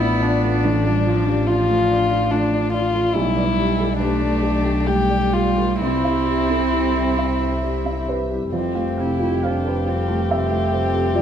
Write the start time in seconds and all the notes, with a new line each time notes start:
Already playing: A1 F3 A3 B3 E4 F4 G4 D5
0.00 D4 D5
0.21 D4 F4 D5
0.42 A3 F4
0.63 A1 A3 D4
0.85 G3 F4 D5
1.06 F3 F4
1.27 E3 D4 G4
1.47 F3 F4
1.69 A3 F4
1.91 D4 D5
2.11 F4 D5
2.31 A3 D4 D5
2.53 D4 D5
2.73 F4 D5
2.94 A3 F4
3.14 B1 G3 A3 E4 G4 D5
3.37 B4 D5
3.59 G4
3.78 G4 A4
3.99 A3 D4 G4 B4
4.21 A3 B4
4.42 G4 D5
4.64 G4 G5
4.86 G3 A3 G4 G5
5.10 G4 D5
5.32 F4 G4 G5
5.57 A3 B4
5.81 C2 G3 C4 E4 E5
6.04 E4 E5
6.27 G4
6.50 C4 A4
6.72 E4 G4
6.95 G3 E4
7.17 C4 E5
7.40 G4 C5
7.63 G3 C5
7.85 C4 E5
8.08 G4 B4 C5
8.30 G3 E4
8.52 F1 F2 G3 C4 F4 G4 A4 C5
8.75 A3 F5
8.98 C3 E4 F5
9.20 A3 F4
9.43 D4 C5 F5
9.65 A4 B4
9.87 C4 F4 C5
10.08 A3 A4
10.30 C3 C4 A4 E5
10.51 A3 F4
10.74 C5
10.94 G4 A4
11.15 F2 D4 F4 D5